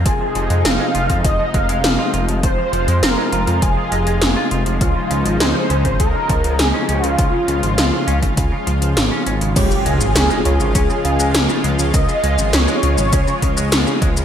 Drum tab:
CC |----------------|----------------|----------------|----------------|
HH |x-xxx-xxx-xxx-xx|x-xxx-xxx-xxx-xx|x-xxx-xxx-xxx-xx|x-xxx-xxx-xxx-xx|
SH |----------------|----------------|----------------|----------------|
SD |----o-------o---|----o-------o---|----o-------o---|----o-------o---|
BD |o------oo-o-----|o-------o-------|o------oo-o-----|o------oo-------|

CC |x---------------|----------------|
HH |x-x-x-x-x-x-x-x-|x-x-x-x-x-x-x-x-|
SH |xx-xxx-xxx-xxx-x|xx-xxx-xxx-xxx-x|
SD |----o-------o---|----o-------o---|
BD |o-------o-------|o-------o-o---o-|